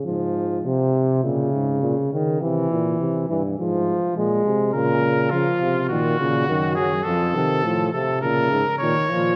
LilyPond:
<<
  \new Staff \with { instrumentName = "Trumpet" } { \time 4/4 \key bes \minor \tempo 4 = 103 r1 | r1 | bes'4 f'4 ges'4. aes'8 | a'4. a'8 bes'4 des''4 | }
  \new Staff \with { instrumentName = "Trombone" } { \clef bass \time 4/4 \key bes \minor f4 c4 des4. ees8 | e4. e8 f4 aes4 | des4 f4 ees8 des8 ees8 ges8 | f8 ees8 f8 c8 des8 r8 ees8 f8 | }
  \new Staff \with { instrumentName = "Euphonium" } { \clef bass \time 4/4 \key bes \minor aes,4 c4 bes,8 aes,8 bes,8 des8 | c8 bes,8 c8 g,8 aes,8 r8 bes,8 c8 | bes,4 des8 c8 bes,8 bes,8 ges,4 | f,8 c8 a,8 c8 bes,8 aes,8 bes,8 bes,8 | }
>>